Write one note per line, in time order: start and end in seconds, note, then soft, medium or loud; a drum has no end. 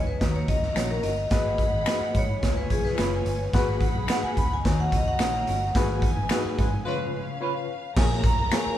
0.00 0.15 C#2 medium
0.00 0.18 D#4 medium
0.00 0.18 B4 medium
0.00 0.18 G#5 medium
0.07 0.36 B4 medium
0.20 0.43 D#2 loud
0.20 1.00 D#3 medium
0.20 0.54 D#4 medium
0.20 1.29 F#4 medium
0.20 0.54 F#4 medium
0.20 0.54 C#5 medium
0.20 1.29 D#5 medium
0.20 1.29 A#5 medium
0.20 kick medium
0.20 snare loud
0.20 closed hi-hat medium
0.36 0.50 C#5 medium
0.48 0.71 C#2 medium
0.48 0.77 D#5 loud
0.48 kick medium
0.48 closed hi-hat medium
0.63 snare soft
0.75 0.98 A#1 loud
0.75 0.86 C#4 medium
0.75 1.09 D#4 medium
0.75 1.10 F#4 medium
0.75 0.86 F#4 medium
0.75 0.87 A#4 medium
0.75 1.10 C#5 medium
0.75 0.91 C#5 medium
0.75 finger snap medium
0.75 snare loud
0.75 closed hi-hat loud
0.91 1.05 A#4 medium
1.03 1.26 G1 medium
1.03 1.11 C#4 medium
1.03 1.12 F#4 medium
1.03 1.12 A#4 medium
1.03 1.31 D#5 medium
1.03 closed hi-hat medium
1.31 1.65 G#1 medium
1.31 2.11 G#2 medium
1.31 1.65 F#4 medium
1.31 2.40 G#4 medium
1.31 1.65 G#4 medium
1.31 1.65 B4 loud
1.31 2.18 D#5 loud
1.31 2.40 F#5 medium
1.31 2.40 B5 medium
1.31 kick loud
1.31 snare loud
1.31 closed hi-hat medium
1.58 kick medium
1.58 closed hi-hat medium
1.73 1.84 G#1 medium
1.85 1.96 D#4 medium
1.85 2.20 F#4 medium
1.85 1.97 F#4 medium
1.85 2.20 G#4 medium
1.85 2.21 B4 medium
1.85 1.97 B4 medium
1.85 finger snap loud
1.85 snare loud
1.85 closed hi-hat loud
2.01 muted fingered electric bass stroke soft
2.15 2.37 G#2 medium
2.15 2.55 C#5 loud
2.15 kick medium
2.15 closed hi-hat medium
2.42 2.65 C#2 loud
2.42 3.22 C#3 medium
2.42 3.51 F4 medium
2.42 2.76 F4 medium
2.42 2.76 B4 medium
2.42 3.51 C#5 medium
2.42 2.77 C#5 medium
2.42 3.51 G#5 medium
2.42 kick medium
2.42 snare medium
2.42 closed hi-hat medium
2.57 2.71 B4 medium
2.70 2.93 B1 medium
2.70 2.84 G#4 medium
2.70 kick medium
2.70 closed hi-hat medium
2.85 3.64 B4 medium
2.85 snare soft
2.97 3.20 F#1 medium
2.97 3.08 C#4 medium
2.97 3.31 F4 medium
2.97 3.08 F4 medium
2.97 3.31 B4 medium
2.97 3.09 B4 medium
2.97 3.31 C#5 medium
2.97 finger snap medium
2.97 snare loud
2.97 closed hi-hat medium
3.25 3.48 G1 medium
3.25 closed hi-hat medium
3.54 3.87 G#1 medium
3.54 4.33 G#2 medium
3.54 3.87 F#4 loud
3.54 4.62 G#4 medium
3.54 3.87 G#4 medium
3.54 3.88 B4 loud
3.54 4.62 F#5 medium
3.54 4.62 B5 medium
3.54 kick loud
3.54 snare loud
3.54 closed hi-hat medium
3.81 kick medium
3.81 closed hi-hat medium
3.95 4.06 B1 medium
4.07 4.18 D#4 medium
4.07 4.19 F#4 medium
4.07 4.42 F#4 medium
4.07 4.42 G#4 medium
4.07 4.19 B4 medium
4.07 4.43 B4 medium
4.07 4.24 F#5 medium
4.07 finger snap loud
4.07 snare loud
4.07 closed hi-hat loud
4.23 4.37 G#5 medium
4.23 muted fingered electric bass stroke medium
4.37 4.59 C#2 medium
4.37 4.52 B5 loud
4.37 kick medium
4.37 closed hi-hat medium
4.53 4.80 G#5 medium
4.64 4.87 D#2 loud
4.64 5.44 D#3 medium
4.64 4.98 D#4 medium
4.64 5.73 F#4 medium
4.64 4.98 F#4 medium
4.64 4.98 C#5 medium
4.64 5.73 D#5 medium
4.64 5.73 A#5 medium
4.64 kick loud
4.64 snare loud
4.64 closed hi-hat medium
4.80 4.93 F#5 medium
4.92 5.21 C#2 loud
4.92 5.08 D#5 medium
4.92 kick medium
4.92 closed hi-hat medium
5.08 5.86 F#5 medium
5.19 5.42 A#1 loud
5.19 5.29 C#4 medium
5.19 5.53 D#4 medium
5.19 5.30 F#4 medium
5.19 5.53 F#4 medium
5.19 5.30 A#4 medium
5.19 5.53 C#5 medium
5.19 finger snap medium
5.19 snare loud
5.19 closed hi-hat loud
5.47 5.70 G1 medium
5.47 5.55 C#4 medium
5.47 5.55 F#4 medium
5.47 5.56 A#4 medium
5.47 closed hi-hat medium
5.75 6.09 G#1 loud
5.75 6.55 G#2 medium
5.75 6.84 D#4 medium
5.75 6.09 F#4 loud
5.75 6.09 G#4 loud
5.75 6.83 B4 medium
5.75 6.09 B4 loud
5.75 6.83 G#5 medium
5.75 kick loud
5.75 snare loud
5.75 closed hi-hat medium
6.02 kick loud
6.02 closed hi-hat medium
6.18 6.28 G#1 loud
6.29 6.40 D#4 medium
6.29 6.64 F#4 loud
6.29 6.41 F#4 medium
6.29 6.64 G#4 medium
6.29 6.65 B4 loud
6.29 6.41 B4 medium
6.29 finger snap loud
6.29 snare loud
6.29 closed hi-hat loud
6.45 muted fingered electric bass stroke medium
6.58 6.81 G#2 medium
6.58 6.70 G#3 medium
6.58 6.70 F#4 medium
6.58 6.70 B4 medium
6.58 kick medium
6.58 closed hi-hat medium
6.84 7.65 C#3 medium
6.84 7.25 G#3 medium
6.84 7.94 C#4 medium
6.84 7.25 F4 medium
6.84 7.19 F4 medium
6.84 7.25 B4 loud
6.84 7.94 B4 medium
6.84 7.19 B4 medium
6.84 7.20 C#5 loud
6.84 7.94 F5 medium
7.41 7.51 C#4 medium
7.41 7.74 F4 medium
7.41 7.52 F4 medium
7.41 7.74 B4 medium
7.41 7.52 B4 loud
7.41 7.75 C#5 loud
7.96 8.30 A#1 medium
7.96 8.76 A#2 medium
7.96 8.30 F4 medium
7.96 8.30 G#4 medium
7.96 8.78 A#4 loud
7.96 8.30 A#4 medium
7.96 8.30 C#5 medium
7.96 8.10 G#5 medium
7.96 8.78 A#5 loud
7.96 kick loud
7.96 snare loud
7.96 crash loud
8.24 8.54 A#5 loud
8.24 kick loud
8.24 closed hi-hat medium
8.38 8.49 C2 medium
8.51 8.78 F4 medium
8.51 8.78 G#4 medium
8.51 8.78 A#4 medium
8.51 8.78 C#5 medium
8.51 8.78 G#5 loud
8.51 finger snap loud
8.51 snare loud
8.51 closed hi-hat loud
8.66 muted fingered electric bass stroke medium